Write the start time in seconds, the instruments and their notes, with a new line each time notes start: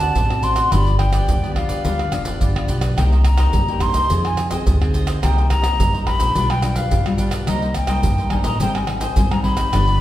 Already playing: nylon-string guitar D3 C4 F#4 A4, flute A5
0.00 cavaquinho C5 D5 F#5, pandeiro, maracas, surdo
0.15 upright bass A1, nylon-string guitar A2, cavaquinho D4 C5 D5 F#5, pandeiro, maracas, surdo
0.30 nylon-string guitar C4 F#4 A4, pandeiro, tamborim, maracas
0.42 cavaquinho D4 C5 D5 F#5, flute C6, pandeiro, maracas
0.56 cavaquinho C5 D5 F#5, pandeiro, tamborim, maracas, surdo
0.71 upright bass G1, nylon-string guitar G2 F3 B3 D4, cavaquinho F4 G4 B4 D5, flute B5, pandeiro, tamborim, maracas, surdo
0.86 cavaquinho G4 B4 D5, pandeiro, maracas
0.99 nylon-string guitar F3 B3 D4, flute G5, muted cavaquinho stroke, pandeiro, tamborim, surdo
1.13 cavaquinho G4 B4 D5, pandeiro, tamborim, maracas, surdo
1.28 upright bass D2, nylon-string guitar D3, pandeiro, maracas, surdo
1.43 nylon-string guitar F3 B3 D4, cavaquinho G4 B4 D5, pandeiro, maracas
1.55 upright bass D2, cavaquinho F4 G4 B4 D5, flute F5, pandeiro, tamborim
1.69 upright bass G2, cavaquinho G4 B4 D5, pandeiro, maracas
1.84 upright bass D2, nylon-string guitar G2 F3 B3 D4, cavaquinho F4 G4 B4 D5, pandeiro, maracas, surdo
1.99 cavaquinho G4 B4 D5, pandeiro, tamborim, maracas
2.12 upright bass F1, nylon-string guitar F3 B3 D4, muted cavaquinho stroke, pandeiro, tamborim, maracas
2.25 cavaquinho G4 B4 D5, pandeiro, maracas, surdo
2.40 upright bass G1, nylon-string guitar D3, cavaquinho F4 G4 B4 D5, pandeiro, maracas, surdo
2.55 nylon-string guitar F3 B3 D4, pandeiro, tamborim, maracas
2.68 upright bass B1, cavaquinho F4 G4 B4 D5, pandeiro, maracas, surdo
2.81 cavaquinho G4 B4 D5, pandeiro, tamborim, maracas, surdo
2.96 upright bass C2, nylon-string guitar C3 A#3 D#4 G4, cavaquinho D#4 A#4 C5 D#5, flute G5, pandeiro, tamborim, maracas, surdo
3.12 cavaquinho A#4 C5 D#5, pandeiro, maracas
3.25 flute A#5, muted cavaquinho stroke, pandeiro, tamborim, maracas, surdo
3.37 nylon-string guitar A#3 D#4 G4, cavaquinho A#4 C5 D#5, pandeiro, tamborim, maracas, surdo
3.53 nylon-string guitar G2, upright bass G2, pandeiro, maracas, surdo
3.68 nylon-string guitar A#3 D#4 G4, cavaquinho A#4 C5 D#5, pandeiro, maracas
3.80 upright bass G2, cavaquinho D#4 A#4 C5 D#5, flute C6, pandeiro, tamborim, maracas
3.94 upright bass C2, cavaquinho A#4 C5 D#5, pandeiro, maracas
4.09 upright bass F2, nylon-string guitar F3 C4 D#4 G#4, cavaquinho F4 G#4 C5 D#5, pandeiro, maracas, surdo
4.24 cavaquinho G#4 C5 D#5, flute G#5, pandeiro, tamborim, maracas
4.37 muted cavaquinho stroke, pandeiro, tamborim, maracas
4.50 nylon-string guitar C4 D#4 G#4, cavaquinho G#4 C5 D#5, flute G5, pandeiro, maracas, surdo
4.66 upright bass D2, nylon-string guitar C3, cavaquinho F4 G#4 C5 D#5, pandeiro, maracas, surdo
4.81 nylon-string guitar C4 D#4 G#4, pandeiro, tamborim, maracas
4.94 cavaquinho F4 G#4 C5 D#5, pandeiro, maracas, surdo
5.07 cavaquinho G#4 C5 D#5, pandeiro, tamborim, maracas, surdo
5.22 upright bass C2, nylon-string guitar C3 A#3 D#4 G4, cavaquinho D#4 A#4 C5 D#5, flute G5, pandeiro, tamborim, maracas, surdo
5.37 cavaquinho A#4 C5 D#5, pandeiro, maracas
5.49 nylon-string guitar A#3 D#4 G4, flute A#5, muted cavaquinho stroke, pandeiro, tamborim, maracas, surdo
5.62 nylon-string guitar A#3 D#4 G4, cavaquinho A#4 C5 D#5, pandeiro, tamborim, maracas, surdo
5.79 nylon-string guitar G2, upright bass G2, pandeiro, maracas, surdo
5.93 cavaquinho A#4 C5 D#5, pandeiro, maracas
6.05 upright bass G2, nylon-string guitar A#3 D#4 G4, cavaquinho D#4 A#4 C5 D#5, flute B5, pandeiro, tamborim
6.18 upright bass A#1, cavaquinho A#4 C5 D#5, pandeiro, maracas
6.35 upright bass B1, nylon-string guitar B2 G3 D4 F4, cavaquinho D4 G4 B4 F5, pandeiro, maracas, surdo
6.49 cavaquinho G4 B4 F5, flute G5, pandeiro, tamborim, maracas
6.62 nylon-string guitar G3 D4 F4, muted cavaquinho stroke, pandeiro, tamborim, maracas
6.75 cavaquinho G4 B4 F5, flute F5, pandeiro, maracas, surdo
6.91 upright bass G2, nylon-string guitar B2, cavaquinho D4 G4 B4 F5, pandeiro, maracas, surdo
7.05 nylon-string guitar G3 D4 F4, pandeiro, tamborim, maracas
7.18 cavaquinho D4 G4 B4 F5, pandeiro, maracas, surdo
7.31 cavaquinho G4 B4 F5, pandeiro, tamborim, maracas, surdo
7.47 upright bass C2, nylon-string guitar C3 G3 A#3 D#4, cavaquinho D#4 A#4 C5 D#5, flute D#5, pandeiro, tamborim, maracas, surdo
7.62 cavaquinho A#4 C5 D#5, pandeiro, maracas
7.74 flute G5, muted cavaquinho stroke, pandeiro, tamborim, maracas, surdo
7.87 nylon-string guitar G3 A#3 D#4, cavaquinho A#4 C5 D#5, pandeiro, tamborim, maracas, surdo
8.03 nylon-string guitar G2, upright bass G2, pandeiro, maracas, surdo
8.18 cavaquinho A#4 C5 D#5, pandeiro, maracas
8.30 upright bass G2, nylon-string guitar G3 A#3 D#4, cavaquinho D#4 A#4 C5 D#5, flute G#5, pandeiro, tamborim
8.44 upright bass A1, cavaquinho A#4 C5 D#5, flute A#5, pandeiro, maracas
8.60 upright bass G#1, nylon-string guitar G#2 G3 C4 D#4, cavaquinho G#4 C5 D#5 G5, flute G5, pandeiro, maracas, surdo
8.75 cavaquinho C5 D#5 G5, flute G#5, pandeiro, tamborim, maracas
8.87 nylon-string guitar G3 C4 D#4, muted cavaquinho stroke, pandeiro, tamborim
9.00 cavaquinho C5 D#5 G5, flute G#5, pandeiro, maracas, surdo
9.16 upright bass G#1, nylon-string guitar D#3 G3 C4 D#4, cavaquinho G#4 C5 D#5 G5, pandeiro, maracas, surdo
9.31 nylon-string guitar G3 C4 D#4, flute A#5, pandeiro, tamborim, maracas
9.43 cavaquinho G#4 C5 D#5 G5, flute B5, pandeiro, surdo
9.57 cavaquinho C5 D#5 G5, pandeiro, tamborim, maracas, surdo
9.72 upright bass G1, nylon-string guitar G2 F3 B3 D4, cavaquinho F4 G4 B4 D5, pandeiro, tamborim, maracas, surdo
9.87 cavaquinho G4 B4 D5, pandeiro, maracas